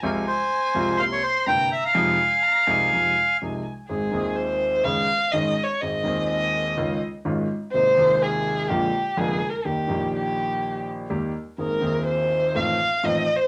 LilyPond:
<<
  \new Staff \with { instrumentName = "Bandoneon" } { \time 4/4 \key f \minor \tempo 4 = 124 r8 c''4. f''16 des''16 c''8 g''8 e''16 f''16~ | f''2. r4 | \key aes \major r1 | r1 |
r1 | r1 | r1 | }
  \new Staff \with { instrumentName = "Violin" } { \time 4/4 \key f \minor aes''2 c'''4 bes''4 | aes''4 bes''8 aes''2 r8 | \key aes \major aes'4 c''4 f''4 \tuplet 3/2 { ees''4 des''8 } | ees''4 ees''4. r4. |
c''4 aes'4 g'4 \tuplet 3/2 { aes'4 bes'8 } | g'4 g'4. r4. | bes'4 c''4 f''4 \tuplet 3/2 { ees''4 c''8 } | }
  \new Staff \with { instrumentName = "Grand piano" } { \clef bass \time 4/4 \key f \minor <c, c f aes f'>8 r4 <c, c f aes f'>8 <c, c g bes e'>8 r8 <g,, g, c g bes e'>8 r8 | <f, c f aes ees'>8 r4 <c, c f aes ees'>8 <f, c f aes ees'>8 r8 <c, c f aes ees'>8 r8 | \key aes \major <aes,, aes, ees aes c' aes'>8 <ees,, ees, ees aes c' aes'>4. <des, des ees aes des' aes'>8 r8 <aes,, aes, ees aes des' aes'>8 r8 | <aes,, aes, ees aes c' aes'>8 <ees,, ees, ees aes c' aes'>4. <des, des ees aes des' f'>8 r8 <aes,, aes, ees aes des' f'>8 r8 |
<aes,, aes, c aes bes ees'>8 <ees,, ees, c aes bes ees'>4. <bes,, bes, d aes bes f'>8 r8 <f,, f, d aes bes f'>8 r8 | <ees, ees g bes g'>8 <bes,, bes, ees g bes g'>2~ <bes,, bes, ees g bes g'>8 <ees, ees g bes g'>8 r8 | <aes,, aes, ees bes c' aes'>8 <ees,, ees, ees bes c' aes'>4. <a,, a, ees a c' f'>8 r8 <a,, a, ees a c' f'>8 r8 | }
>>